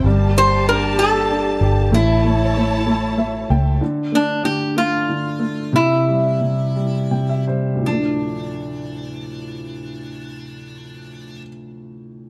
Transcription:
<<
  \new Staff \with { instrumentName = "String section" } { \time 6/8 \key d \minor \tempo 4. = 61 <bes g' a''>2. | <e' cis'' a''>2. | r2. | r2. |
r2. | r2. | }
  \new Staff \with { instrumentName = "Resonator guitar played with a steel bar" } { \time 6/8 \key d \minor r8 c''8 bes'8 a'4. | e'4. r4. | r8 d'8 g'8 f'4. | e'2~ e'8 r8 |
d'2.~ | d'2. | }
  \new Staff \with { instrumentName = "Upright piano" } { \time 6/8 \key d \minor r2. | r2 e''8 g''8 | r2. | r2 g''16 e''16 c''8 |
r2. | r2. | }
  \new Staff \with { instrumentName = "Upright piano" } { \time 6/8 \key d \minor g8 g'8 d'8 g'8 d'8 g'8 | a8 a8 a8 a8 a8 a8 | d8 a8 d8 a8 d8 a8 | c8 g8 c8 g8 c8 g8 |
<d, a, f a>2.~ | <d, a, f a>2. | }
  \new Staff \with { instrumentName = "Fingered electric bass" } { \clef bass \time 6/8 \key d \minor g,,2~ g,,8 g,,8 | a,,2~ a,,8 cis,8 | r2. | r2. |
r2. | r2. | }
>>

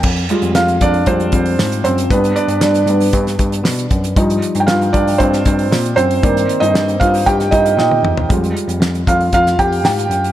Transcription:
<<
  \new Staff \with { instrumentName = "Felt piano" } { \time 4/4 \key f \dorian \tempo 4 = 116 r4 <f' f''>8 <d' d''>8 <c' c''>4. <c' c''>8 | b'8 <d' d''>8 <d' d''>2 r4 | r8. r32 g''32 <f' f''>8 <d' d''>8 <c' c''>4. <c' c''>8~ | <c' c''>8. <ees' ees''>8. <f' f''>8 <g' g''>8 <ees' ees''>8 <ees' ees''>8. r16 |
r4. <f' f''>8 <f' f''>8 <g' g''>8 <g' g''>4 | }
  \new Staff \with { instrumentName = "Felt piano" } { \clef bass \time 4/4 \key f \dorian r8 <g aes f'>8 r4 <g aes f'>8 r4. | <g b d'>8 r4 <g b d'>8 r2 | <f g ees'>1 | <ees bes d''>1 |
<g aes f'>8 r2. r8 | }
  \new Staff \with { instrumentName = "Tine electric piano" } { \clef bass \time 4/4 \key f \dorian f,8 r16 f,16 f,8 f,8 f,8 f,8 aes,8 fis,8 | g,8 r16 g,16 g,8 g,8 g,8 g,8 b,8 fis,8 | g,8 r16 g,16 g,8 g,8 g,8 g,8 bes,8 fis,8 | g,8 r16 g,16 g,8 g,8 g,8 g,8 bes,8 e,8 |
f,8 r16 f,16 f,8 f,8 f,8 f,8 aes,8 fis,8 | }
  \new DrumStaff \with { instrumentName = "Drums" } \drummode { \time 4/4 <cymc bd>16 hho16 <hho hhp>16 <hho hhp>16 <hho hhp sn>16 hhp16 <hho hhp bd>16 hho16 <hho hhp bd>16 hhp16 <hho hhp bd>16 hho16 <hho hhp sn>16 <hho hhp>16 <hho hhp>16 <hho hhp>16 | <hho hhp bd>16 <hho hhp>16 <hho hhp>16 <hho hhp>16 <hho hhp sn>16 <hho hhp>16 <hho hhp>16 <hho hhp>16 <hho hhp bd>16 <hho hhp sn>16 <hho hhp bd>16 <hho hhp>16 <hho hhp sn>16 <hho hhp>16 <hho hhp bd>16 <hho hhp>16 | <hho hhp bd>16 <hho hhp>16 <hho hhp>16 <hho hhp>16 <hho hhp sn>16 <hho hhp>16 <hho hhp bd>16 <hho hhp>16 <hho hhp bd>16 <hhp sn>16 <hho hhp bd>16 hho16 <hho hhp sn>16 hhp16 <hho hhp>16 hho16 | <hho hhp bd>16 <hho hhp>16 <hho hhp>16 <hho hhp>16 <hho hhp sn>16 <hho hhp>16 <hho hhp bd>16 <hho hhp>16 <hho hhp bd>16 <hho hhp sn>16 <hho hhp bd>16 <hho hhp>16 sn16 tommh16 toml16 tomfh16 |
<hho hhp bd>16 <hho hhp>16 <hho hhp>16 <hho hhp>16 <hho hhp sn>16 hhp16 <hho hhp bd>16 hho16 <hho hhp bd>16 <hhp sn>16 <hho hhp bd>16 hho16 <hho hhp sn>16 <hho hhp>16 <hho hhp>16 <hho hhp>16 | }
>>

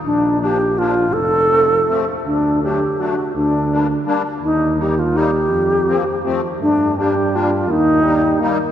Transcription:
<<
  \new Staff \with { instrumentName = "Alto flute" } { \time 3/4 \key f \mixolydian \tempo 4 = 166 d'4 g'4 f'4 | a'2~ a'8 r8 | d'4 g'4 fis'4 | d'4.~ d'16 r4 r16 |
ees'4 g'8 f'8 g'4~ | g'2~ g'8 r8 | d'4 g'4 f'4 | ees'2~ ees'8 r8 | }
  \new Staff \with { instrumentName = "Accordion" } { \time 3/4 \key f \mixolydian r4 <f bes d'>8 r8 <f bes d'>8 r8 | r4 <f a c'>8 r8 <f a c'>8 r8 | r4 <fis a d'>8 r8 <fis a d'>8 r8 | r4 <g bes d'>8 r8 <g bes d'>8 r8 |
r4 <g bes ees'>8 r8 <g bes ees'>8 r8 | r4 <f bes c'>8 r8 <f a c'>8 r8 | r4 <g bes d'>8 r8 <g bes d'>8 r8 | r4 <g bes ees'>8 r8 <g bes ees'>8 r8 | }
  \new Staff \with { instrumentName = "Euphonium" } { \time 3/4 \key f \mixolydian r2. | r2. | r2. | r2. |
r2. | r2. | a4 g2 | bes4 g4 bes4 | }
  \new Staff \with { instrumentName = "Tuba" } { \clef bass \time 3/4 \key f \mixolydian bes,,2. | f,,2. | d,2. | d,2. |
ees,2. | f,2 f,4 | g,2. | ees,2. | }
>>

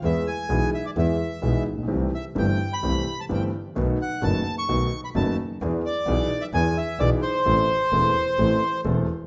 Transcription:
<<
  \new Staff \with { instrumentName = "Bandoneon" } { \time 4/4 \key e \phrygian \tempo 4 = 129 e''8 gis''4 e''16 d''16 e''4. r8 | r8 e''8 g''8. b''4 a''16 g''8 r8 | r8 fis''8 a''8. cis'''4 b''16 a''8 r8 | r8 d''4~ d''16 e''16 gis''8 e''8 d''8 c''8~ |
c''2. r4 | }
  \new Staff \with { instrumentName = "Grand piano" } { \clef bass \time 4/4 \key e \phrygian <e, e gis b gis'>8 r8 <b,, b, e gis b gis'>8 r8 <e, e gis b gis'>8 r8 <b,, b, e gis b gis'>8 r32 a,,32 bes,,32 b,,32 | <c, c e a c' g'>8 r8 <g,, g, e a c' g'>8 r8 <c, c e a c' g'>8 r8 <g,, g, e a c' g'>8 r8 | <b,, b, dis a b fis'>8 r8 <fis,, fis, dis a b fis'>8 r8 <b,, b, dis a b fis'>8 r8 <fis,, fis, dis a b fis'>8 r8 | <e, e b d' gis'>8 r8 <b,, b, e b d' gis'>8 r8 <e, e b d' gis'>8 r8 <b,, b, e b d' gis'>8 r8 |
<a,, a, e a c' a'>8 r8 <e,, e, e a c' a'>8 r8 <a,, a, e a c' a'>8 r8 <e,, e, e a c' a'>8 r8 | }
  \new Staff \with { instrumentName = "Double bass" } { \clef bass \time 4/4 \key e \phrygian e,8 r8 b,,8 r8 e,8 r8 b,,8 bes,,8 | c,8 r8 g,,8 r8 c,8 r8 g,,8 r8 | b,,8 r8 fis,,8 r8 b,,8 r8 fis,,8 r8 | e,8 r8 b,,8 r8 e,8 r8 b,,8 r8 |
a,,8 r8 e,,8 r8 a,,8 r8 e,,8 r8 | }
>>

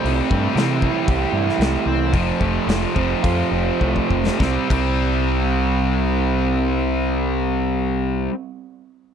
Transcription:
<<
  \new Staff \with { instrumentName = "Overdriven electric guitar" } { \time 4/4 \key c \major \tempo 4 = 100 c8 a8 e8 e'8 g'8 e'8 a8 e8 | f,8 a8 f8 c'8 f'8 c'8 a8 f8 | <c g c'>8 <c g c'>2.~ <c g c'>8~ | <c g c'>1 | }
  \new Staff \with { instrumentName = "Distorted electric guitar" } { \clef bass \time 4/4 \key c \major <c g c'>4 <c g c'>2~ <c g c'>8 r8 | <f, c f>4. <f, c f>2~ <f, c f>8 | <c g c'>8 <c g c'>2.~ <c g c'>8~ | <c g c'>1 | }
  \new Staff \with { instrumentName = "Picked electric bass" } { \clef bass \time 4/4 \key c \major c,8 g,8 c4 c,8 g,8 c,8 c,8 | f,,8 f,,8 f,,8 f,,8 f,8 f,,8 c,8 f,,8 | c,8 c,2.~ c,8~ | c,1 | }
  \new DrumStaff \with { instrumentName = "Drums" } \drummode { \time 4/4 hho8 bd8 <hho sn>8 bd8 <hho bd>8. sn16 <hho sn>4 | <hho bd>8 bd8 <hho sn>8 bd8 <hho bd>4 bd16 bd16 bd16 sn16 | <bd sn>8 <cymc bd>8 r4 r4 r4 | r4 r4 r4 r4 | }
>>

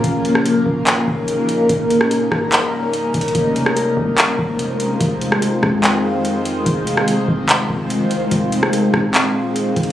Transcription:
<<
  \new Staff \with { instrumentName = "Ambient pad" } { \time 4/4 \key f \minor \tempo 4 = 145 <des g bes ees' bes'>1~ | <des g bes ees' bes'>1 | <ees aes c' f' c''>1~ | <ees aes c' f' c''>1~ |
<ees aes c' f' c''>1~ | <ees aes c' f' c''>1 | }
  \new Staff \with { instrumentName = "808-style bass" } { \clef bass \time 4/4 \key f \minor ees,,4. ees,,4 ees,,8. bes,,8. | ees,,4. des,,2 ees,,8 | f,,4. c,8 r8 f,,4. | f,,4. f,2~ f,8 |
f,,4. f,,4 f,,8. c,8. | f,,4. ees,,2 f,,8 | }
  \new DrumStaff \with { instrumentName = "Drums" } \drummode { \time 4/4 <hh bd>8 hh16 ss16 hh8 bd8 <hc hh>8 bd8 hh8 hh8 | <hh bd>8 hh16 ss16 hh8 <bd ss>8 <hc hh>4 \tuplet 3/2 { hh16 r16 r16 <hh bd>16 hh16 hh16 } | <hh bd>8 hh16 ss16 hh8 bd8 <hc hh>8 bd8 hh8 hh8 | <hh bd>8 hh16 ss16 hh8 <bd ss>8 <hc hh>4 hh8 hh8 |
<hh bd>8 hh16 ss16 hh8 bd8 <hc hh>8 bd8 hh8 hh8 | <hh bd>8 hh16 ss16 hh8 <bd ss>8 <hc hh>4 \tuplet 3/2 { hh16 r16 r16 <hh bd>16 hh16 r16 } | }
>>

